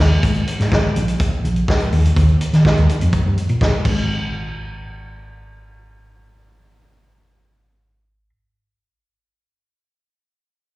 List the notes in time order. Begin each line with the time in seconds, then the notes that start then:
0.00 D#2, snare
0.23 G#1, kick, closed hi-hat
0.34 closed hi-hat
0.47 closed hi-hat
0.60 G#2, snare, closed hi-hat
0.72 G#1, kick, snare
0.96 A#1, closed hi-hat
1.08 closed hi-hat
1.20 kick, closed hi-hat
1.44 A#1, closed hi-hat
1.56 closed hi-hat
1.68 kick, snare
1.80 closed hi-hat
1.92 D#2, open hi-hat
2.05 closed hi-hat
2.16 D#2, kick, closed hi-hat
2.28 closed hi-hat
2.41 closed hi-hat
2.53 D#3, snare, closed hi-hat
2.65 kick, snare
2.77 D#2, closed hi-hat
2.89 closed hi-hat
3.01 F2, closed hi-hat
3.13 kick, closed hi-hat
3.26 G2
3.38 closed hi-hat
3.49 A#2, closed hi-hat
3.61 kick, snare
3.85 G#1, kick, crash